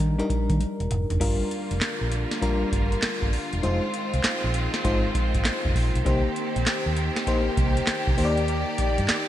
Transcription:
0.00 0.14 D#3 medium
0.00 0.19 G3 medium
0.00 0.19 D4 medium
0.00 0.19 D#4 medium
0.00 0.20 A#4 loud
0.00 kick medium
0.00 closed hi-hat medium
0.19 0.87 G3 medium
0.19 0.88 D4 medium
0.19 0.88 D#4 medium
0.19 0.88 A#4 medium
0.19 closed hi-hat medium
0.30 muted fingered electric bass stroke soft
0.30 kick loud
0.30 closed hi-hat medium
0.50 0.58 D#3 medium
0.50 kick medium
0.50 closed hi-hat medium
0.60 closed hi-hat medium
0.60 high tom medium
0.80 0.88 E1 medium
0.80 closed hi-hat soft
0.91 1.05 F1 loud
0.91 closed hi-hat medium
0.91 mid tom medium
1.10 1.18 F#1 medium
1.10 closed hi-hat medium
1.10 floor tom medium
1.20 1.36 G1 loud
1.20 3.61 D3 medium
1.20 2.05 G3 medium
1.20 3.61 G3 medium
1.20 3.61 A#3 medium
1.20 2.05 D4 medium
1.20 6.01 F4 medium
1.20 2.06 F4 medium
1.20 2.06 A#4 medium
1.20 kick medium
1.20 closed hi-hat medium
1.20 crash medium
1.51 closed hi-hat medium
1.71 1.79 F1 medium
1.71 closed hi-hat medium
1.81 muted fingered electric bass stroke medium
1.81 snare loud
1.81 clap medium
1.81 closed hi-hat medium
2.01 2.24 A#1 medium
2.12 closed hi-hat medium
2.31 snare medium
2.31 closed hi-hat soft
2.41 3.26 G3 medium
2.41 3.27 D4 medium
2.41 3.27 F4 medium
2.41 3.27 A#4 loud
2.41 kick medium
2.41 closed hi-hat medium
2.72 2.95 G1 medium
2.72 kick loud
2.72 closed hi-hat medium
2.92 closed hi-hat medium
3.02 muted fingered electric bass stroke soft
3.02 snare loud
3.02 clap medium
3.02 closed hi-hat medium
3.22 3.30 G1 medium
3.22 kick loud
3.33 open hi-hat medium
3.53 3.61 E1 loud
3.53 closed hi-hat medium
3.62 3.78 F1 loud
3.62 9.28 D#3 medium
3.62 4.48 G#3 medium
3.62 6.03 G#3 medium
3.62 6.03 C4 medium
3.62 4.48 D#4 medium
3.62 4.48 F4 medium
3.62 4.48 C5 loud
3.62 closed hi-hat medium
3.94 closed hi-hat medium
4.14 4.21 C2 medium
4.14 closed hi-hat medium
4.24 snare loud
4.24 clap medium
4.24 closed hi-hat medium
4.44 4.66 A#1 medium
4.54 closed hi-hat medium
4.74 snare medium
4.74 closed hi-hat soft
4.84 5.07 G#1 loud
4.84 5.69 G#3 medium
4.84 5.69 D#4 medium
4.84 5.69 F4 medium
4.84 5.70 C5 loud
4.84 kick medium
4.84 closed hi-hat medium
5.15 kick loud
5.15 closed hi-hat medium
5.34 5.43 G#1 medium
5.34 kick loud
5.34 closed hi-hat medium
5.45 snare loud
5.45 clap medium
5.45 closed hi-hat medium
5.65 5.73 F1 medium
5.65 kick loud
5.75 5.90 A#1 medium
5.75 kick medium
5.75 open hi-hat medium
5.95 6.03 B1 loud
5.95 closed hi-hat medium
6.05 6.21 C2 loud
6.05 6.90 A#3 medium
6.05 9.28 A#3 medium
6.05 8.16 C4 medium
6.05 6.90 D#4 medium
6.05 9.28 G4 medium
6.05 6.91 G4 medium
6.05 6.91 C5 medium
6.05 kick loud
6.05 closed hi-hat medium
6.36 closed hi-hat medium
6.56 6.64 A#1 medium
6.56 closed hi-hat medium
6.66 muted fingered electric bass stroke soft
6.66 snare loud
6.66 clap medium
6.66 closed hi-hat medium
6.86 7.09 D#2 medium
6.97 closed hi-hat medium
7.16 snare medium
7.16 closed hi-hat soft
7.27 8.12 A#3 medium
7.27 8.12 D#4 medium
7.27 8.12 G4 medium
7.27 8.12 C5 loud
7.27 kick medium
7.27 closed hi-hat medium
7.57 7.80 C2 medium
7.57 kick loud
7.57 closed hi-hat medium
7.77 closed hi-hat medium
7.87 muted fingered electric bass stroke soft
7.87 snare loud
7.87 clap medium
7.87 closed hi-hat medium
8.07 8.15 C2 medium
8.07 kick loud
8.17 8.63 D#2 loud
8.17 9.16 A#3 medium
8.17 9.16 D#4 medium
8.17 9.17 G4 medium
8.17 8.26 C5 medium
8.17 9.28 D5 medium
8.17 open hi-hat medium
8.25 9.20 D5 loud
8.37 closed hi-hat medium
8.48 closed hi-hat medium
8.78 kick medium
8.78 closed hi-hat medium
8.98 9.06 G2 medium
8.98 closed hi-hat medium
9.09 muted fingered electric bass stroke soft
9.09 snare loud
9.09 clap medium
9.09 closed hi-hat medium

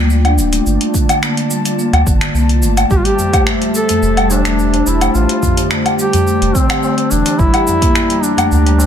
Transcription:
0.00 0.39 D2 medium
0.00 0.23 A#3 loud
0.00 2.86 F4 medium
0.00 2.86 D5 medium
0.00 0.62 G5 medium
0.10 cabasa soft
0.25 0.37 D4 loud
0.25 closed hi-hat soft
0.25 low woodblock medium
0.37 0.60 D1 loud
0.37 cabasa medium
0.53 0.93 A3 loud
0.53 closed hi-hat medium
0.53 cabasa soft
0.66 0.78 G1 medium
0.66 7.35 A5 medium
0.66 cabasa soft
0.81 closed hi-hat soft
0.94 1.21 D3 medium
0.94 kick medium
0.94 cabasa medium
1.09 closed hi-hat medium
1.09 cabasa soft
1.09 low woodblock medium
1.23 1.49 A#3 medium
1.23 finger snap medium
1.23 cabasa soft
1.37 closed hi-hat soft
1.50 1.77 G3 medium
1.50 cabasa medium
1.65 closed hi-hat medium
1.65 cabasa soft
1.79 1.92 A#3 medium
1.79 cabasa soft
1.93 2.03 D2 medium
1.93 closed hi-hat soft
1.93 low woodblock medium
2.07 2.29 G1 medium
2.07 2.34 D3 medium
2.07 kick loud
2.07 cabasa medium
2.21 finger snap medium
2.21 closed hi-hat medium
2.21 cabasa soft
2.34 2.63 C2 medium
2.34 2.61 A#3 medium
2.34 cabasa soft
2.49 closed hi-hat soft
2.62 2.85 G1 medium
2.62 2.71 A3 medium
2.62 cabasa medium
2.77 closed hi-hat medium
2.77 cabasa soft
2.77 low woodblock medium
2.90 3.02 A1 loud
2.90 2.99 G3 loud
2.90 7.35 G4 medium
2.90 3.00 G4 loud
2.90 7.35 C5 medium
2.90 5.12 E5 medium
2.90 kick loud
2.90 cabasa soft
2.98 3.07 F4 medium
3.05 3.47 G4 loud
3.05 3.18 G4 medium
3.05 closed hi-hat soft
3.19 tabla ge medium
3.19 cabasa medium
3.33 3.60 A3 loud
3.33 kick loud
3.33 closed hi-hat medium
3.33 tabla tin medium
3.33 cabasa soft
3.33 low woodblock medium
3.47 finger snap medium
3.47 cabasa soft
3.62 3.74 G3 medium
3.62 closed hi-hat soft
3.75 4.33 A4 loud
3.75 cabasa medium
3.89 4.16 A3 loud
3.89 closed hi-hat medium
3.89 tabla ge medium
3.89 cabasa soft
4.02 4.82 E1 medium
4.02 cabasa soft
4.17 4.44 G3 loud
4.17 closed hi-hat soft
4.17 tabla tin soft
4.17 low woodblock medium
4.30 4.89 D4 loud
4.30 tabla na medium
4.30 cabasa medium
4.45 4.72 A3 loud
4.45 finger snap medium
4.45 closed hi-hat medium
4.45 cabasa soft
4.59 cabasa soft
4.73 4.86 D4 loud
4.73 closed hi-hat soft
4.73 tabla tin medium
4.87 5.09 E1 loud
4.87 5.16 E4 medium
4.87 cabasa medium
5.01 5.41 A3 loud
5.01 closed hi-hat medium
5.01 tabla na medium
5.01 cabasa soft
5.01 low woodblock medium
5.15 5.26 A1 loud
5.15 5.71 F4 medium
5.15 8.86 D5 medium
5.15 cabasa soft
5.29 closed hi-hat soft
5.29 tabla tin soft
5.43 5.70 D3 medium
5.43 kick medium
5.43 tabla ge medium
5.43 cabasa medium
5.57 closed hi-hat medium
5.57 tabla tin medium
5.57 cabasa soft
5.71 5.98 A3 medium
5.71 finger snap medium
5.71 cabasa soft
5.86 closed hi-hat soft
5.86 low woodblock medium
5.99 6.26 G3 medium
5.99 6.56 G4 loud
5.99 cabasa medium
6.13 closed hi-hat medium
6.13 tabla ge medium
6.13 cabasa soft
6.27 6.41 A3 medium
6.27 cabasa soft
6.42 6.52 E1 loud
6.42 closed hi-hat soft
6.55 6.82 D3 medium
6.55 7.12 C4 loud
6.55 kick medium
6.55 tabla na medium
6.55 cabasa medium
6.70 finger snap medium
6.70 closed hi-hat medium
6.70 cabasa soft
6.70 low woodblock medium
6.83 7.10 A3 medium
6.83 tabla na medium
6.83 cabasa soft
6.98 closed hi-hat soft
7.11 7.23 E1 medium
7.11 7.25 E3 medium
7.11 7.40 D4 loud
7.11 cabasa medium
7.25 closed hi-hat medium
7.25 tabla na medium
7.25 cabasa soft
7.39 7.51 G1 loud
7.39 7.48 G3 loud
7.39 8.24 E4 loud
7.39 8.86 G4 medium
7.39 8.86 G5 medium
7.39 8.86 A#5 medium
7.39 kick loud
7.39 cabasa soft
7.54 7.67 G4 medium
7.54 closed hi-hat soft
7.54 low woodblock medium
7.67 tabla ge loud
7.67 cabasa medium
7.81 8.08 A#3 loud
7.81 kick loud
7.81 closed hi-hat medium
7.81 tabla tin medium
7.81 cabasa soft
7.95 finger snap medium
7.95 cabasa soft
8.10 8.22 G3 medium
8.10 closed hi-hat soft
8.23 8.86 D4 loud
8.23 cabasa medium
8.37 8.64 A3 loud
8.37 closed hi-hat medium
8.37 tabla ge medium
8.37 cabasa soft
8.37 low woodblock medium
8.51 8.86 D2 medium
8.51 cabasa soft
8.65 8.86 G3 loud
8.65 closed hi-hat soft
8.65 tabla tin medium
8.78 tabla na medium
8.78 cabasa medium

